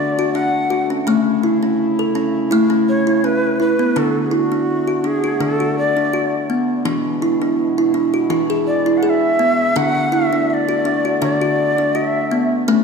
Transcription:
Already playing: D3 A3 D4 F#4 D5
0.19 F#4
0.34 D4 F#5
0.70 F#4
0.90 C#4
1.07 C#3 A3 C#4 E4
1.43 E4
1.63 C#4
1.99 A4
2.15 C#4
2.51 A3 E4
2.70 C#4
2.89 C#5
3.07 E4
3.24 C#4 B4
3.60 E4 B4
3.79 B3
3.96 D3 A3 D4 F#4 A4
4.26 G#4
4.31 E4 F#4
4.52 D4
4.87 F#4
5.04 D4 G#4
5.24 F#4
5.41 D3 D4 A4
5.60 F#4
5.79 D5
5.97 D4
6.13 F#4
6.50 B3
6.85 B2 E3 G#3 D4 E4
7.22 E4
7.42 D4
7.78 E4
7.94 D4
8.14 F#4
8.30 E3 E4
8.50 G#4
8.67 D5
8.86 E4
8.97 F#5
9.03 G#4 F#5
9.10 E5
9.39 B3
9.76 D3 A3 D4 F#4 F#5
10.12 E4 E5
10.33 D4
10.50 D5 E5
10.69 F#4
10.85 D4
11.05 F#4
11.22 D3 D4 D5
11.41 F#4
11.78 D4
11.95 F#4 E5
12.31 B3
12.68 C#3 A3 C#4 E4

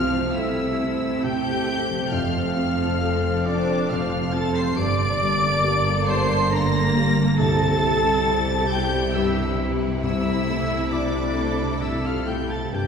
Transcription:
Already playing: C2 C3 E3 F3 A3 C4 A4 C5 F5 F6
0.33 E4 A4 C5 E5 E6
0.78 C4 C5
1.22 C3 G4 G5 G6
1.68 C4
1.90 F3
2.11 F1 F2 F3 C4 F5 F6
2.36 C3
2.56 C4
3.01 A4 C5
3.45 C4 D4 C5 D5 D6
3.89 C3 F3 C4 F5 F6
4.12 C3
4.33 C4 A4 A5 A6
4.55 C3 C5 C6 C7
4.75 G1 G2 A#3 A4 D5 D6 D7
4.80 A#3 D4
5.01 D3
5.21 G3
5.44 G4
5.64 A#3 G4
6.07 G3 C5 C6 C7
6.31 G4
6.51 D3 G3 A#3 A#5 A#6
6.74 D3
6.96 G3
7.18 D3
7.38 C2 C3 E4 G4 A4 A5 A6
7.42 G3 E4
7.62 C4
7.82 G3
8.05 E4
8.27 E4
8.49 G4
8.70 G3 G4 C5 G5 G6
8.94 E4
9.14 G2 G3 E4 E5 E6
9.37 C4
9.59 G3
9.82 C4
10.03 C2 C3 A3 E4 A4 E5 E6
10.26 C4
10.48 A3
10.70 E4
10.91 D4 E4 C5 D5 D6
11.36 A3
11.60 E4
11.80 C3 A3 E4 E5 E6
12.03 C4 F4 F5 F6
12.25 A3 G4 G5 G6
12.50 C4 A4 A5 A6
12.72 G1 G2 A#3 D4 G4 A#4 G5 G6

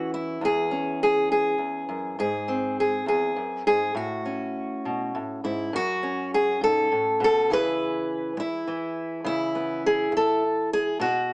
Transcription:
Already playing: E2 E3 C#4 F#4
0.14 E4
0.41 E2 G#4
0.71 C#4
1.03 G#4
1.32 G#4
1.58 E2
1.89 F#2
2.19 G#2 G#4
2.48 C4
2.80 G#4
3.06 E2 G#4
3.36 F#2
3.67 G#2 G#4
3.95 A2 F#4
4.26 C#4
4.85 B2
5.15 A2
5.44 G#2 E4
5.73 F#2 F#4
6.03 C#4
6.34 G#4
6.61 G#2 A4
6.92 A2
7.20 B2
7.24 A4
7.50 C#3 E3 E4 G#4 B4
8.37 E4, muted steel-string acoustic guitar stroke
8.67 E3
9.24 C#3 E4
9.55 B3
9.86 G#4
10.12 muted steel-string acoustic guitar stroke
10.17 A4
10.73 G#4
11.00 B2 F#4

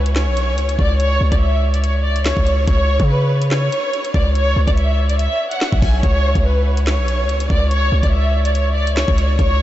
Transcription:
Already playing: C#2 B4
0.06 closed hi-hat
0.16 C#5, snare, clap
0.27 B1
0.37 closed hi-hat
0.53 C#2
0.58 closed hi-hat
0.69 closed hi-hat
0.79 C#2 D5, kick
1.00 C#5, closed hi-hat
1.21 C#2
1.31 C#2 D5, kick, closed hi-hat
1.41 E5
1.74 D5, closed hi-hat
1.84 C#5, closed hi-hat
2.04 D5
2.16 closed hi-hat
2.26 C#5, snare, clap
2.37 C#2, kick
2.47 closed hi-hat
2.68 C#2 C#5, kick, closed hi-hat
3.00 C#3, kick, closed hi-hat
3.10 B4
3.42 closed hi-hat
3.51 C#5, snare, clap
3.72 closed hi-hat
3.93 closed hi-hat
4.05 closed hi-hat
4.14 C#2 D5, kick
4.35 C#5, closed hi-hat
4.56 C#2
4.68 C#2 D5, kick, closed hi-hat
4.77 E5, closed hi-hat
5.09 D5, closed hi-hat
5.19 E5, closed hi-hat
5.51 F#5, closed hi-hat
5.61 snare, clap
5.72 B1, kick
5.82 B1 G#5, kick, open hi-hat
6.03 C#2 C#5, kick, closed hi-hat
6.35 C#2, kick, closed hi-hat
6.45 B4
6.77 closed hi-hat
6.87 C#5, snare, clap
6.98 B1
7.08 closed hi-hat
7.24 C#2
7.29 closed hi-hat
7.40 closed hi-hat
7.50 C#2 D5, kick
7.71 C#5, closed hi-hat
7.92 C#2
8.03 C#2 D5, kick, closed hi-hat
8.12 E5
8.45 D5, closed hi-hat
8.55 C#5, closed hi-hat
8.76 D5
8.87 closed hi-hat
8.97 C#5, snare, clap
9.08 C#2, kick
9.18 closed hi-hat
9.39 C#2 C#5, kick, closed hi-hat

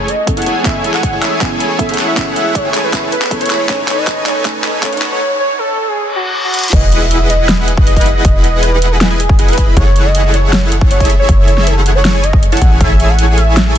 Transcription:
Already playing: F#1 A3 C#4 E4 G#4 C#5
0.08 D#5, closed hi-hat
0.26 B3 C#4 E4 A4, kick, closed hi-hat
0.37 E4 G#4 A4 C#5 F#5 A5, closed hi-hat
0.42 closed hi-hat
0.46 A1 E4 G#4 A4 C#5 G#5, closed hi-hat
0.63 B3 C#4 E4 G#4 A4 C#5 E5 G#5, kick, clap, closed hi-hat
0.67 G#5
0.84 closed hi-hat
0.94 F#5, clap
1.03 kick, closed hi-hat
1.13 E4 G#4 A4 C#5 G#5
1.22 E5, clap, closed hi-hat
1.40 B3 C#4 E4 G#5, kick, clap, closed hi-hat
1.60 closed hi-hat
1.78 B3 C#4 E4 A4 E5, kick, closed hi-hat
1.89 E4 G#4 A4 C#5 F#5, closed hi-hat
1.94 closed hi-hat
1.98 A1, clap, closed hi-hat
2.08 E5
2.15 B3 C#4 E4, kick, clap, closed hi-hat
2.20 G#5
2.36 E5, closed hi-hat
2.55 C#5, kick, closed hi-hat
2.65 E4 G#4 A4 C#5 G#5
2.74 clap, closed hi-hat
2.84 B4
2.92 B3 C#4 E4 G#4, kick, clap, closed hi-hat
3.03 E4 G#4 A4 C#5 A5
3.12 B4, closed hi-hat
3.22 clap
3.30 B3 C#4 E4 G#4 A4 C#5 G#5, kick, closed hi-hat
3.41 C#5, closed hi-hat
3.46 closed hi-hat
3.50 E4 G#4 A4 C#5 B5, clap, closed hi-hat
3.67 B1 A3 C#4 D#4 A4 C#5, kick, clap, closed hi-hat
3.71 G#5
3.88 clap, closed hi-hat
3.98 D#5
4.07 kick, clap, closed hi-hat
4.17 D#4 A4 B4 C#5 G#5
4.26 C#5, clap, closed hi-hat
4.44 A3 C#4 D#4 G#5, kick, clap, closed hi-hat
4.64 clap, closed hi-hat
4.82 A3 C#4 D#4 A4 C#5, kick, clap, closed hi-hat
4.93 D#4 A4 B4 C#5 F#5, closed hi-hat
4.97 closed hi-hat
5.02 clap, closed hi-hat
5.12 C#5
5.40 C#5
5.59 A4
5.87 G#4
5.97 reverse cymbal
6.16 F#4
6.45 F#4
6.54 closed hi-hat
6.59 closed hi-hat
6.64 closed hi-hat
6.68 closed hi-hat
6.73 E1 E4 G#4 B4 D#5 F#5, kick, closed hi-hat, crash, impact
6.92 closed hi-hat
7.01 E5
7.11 closed hi-hat
7.21 E4 G#4 B4 D#5 F#5
7.29 D#5, closed hi-hat
7.49 snare, closed hi-hat
7.68 closed hi-hat
7.77 kick
7.87 D#5, closed hi-hat
7.96 E4 G#4 B4 D#5 F#5, kick, closed hi-hat
8.01 closed hi-hat
8.06 closed hi-hat
8.15 D#5
8.25 E1, kick, closed hi-hat
8.44 D#5, closed hi-hat
8.63 B4, closed hi-hat
8.72 E4 G#4 B4 D#5 F#5
8.82 closed hi-hat
8.91 G#4
9.01 snare, closed hi-hat
9.10 E4 G#4 B4 D#5 G#5
9.20 G#4, closed hi-hat
9.29 kick
9.39 E4 G#4 B4 D#5 F#5, closed hi-hat
9.48 B4, closed hi-hat
9.53 closed hi-hat
9.58 E4 G#4 B4 B5, kick, closed hi-hat
9.77 F#1 E4 G#4 A4 C#5 F#5, kick, closed hi-hat
9.96 closed hi-hat
10.05 D#5
10.15 closed hi-hat
10.24 E4 G#4 A4 C#5 F#5
10.34 C#5, closed hi-hat
10.53 snare, closed hi-hat
10.72 closed hi-hat
10.81 kick
10.91 C#5, closed hi-hat
11.00 E4 G#4 A4 C#5 E5, kick, closed hi-hat
11.05 closed hi-hat
11.10 closed hi-hat
11.19 C#5
11.29 F#1, kick, closed hi-hat
11.48 C#5, closed hi-hat
11.57 snare
11.67 A4, closed hi-hat
11.76 E4 G#4 A4 C#5 F#5
11.86 closed hi-hat
11.95 C#5
12.05 snare, closed hi-hat
12.14 E4 G#4 A4 C#5 G#5
12.23 D#5, closed hi-hat
12.33 kick
12.43 closed hi-hat
12.52 E4 G#4 A4 C#5 F#5 A5, closed hi-hat
12.57 closed hi-hat
12.62 A1 E4 G#4 A4, kick, closed hi-hat
12.80 E4 G#4 A4 C#5 E5 G#5, kick, closed hi-hat
13.00 closed hi-hat
13.09 F#5
13.19 closed hi-hat
13.28 E4 G#4 A4 C#5 G#5
13.37 E5, closed hi-hat
13.57 snare, closed hi-hat

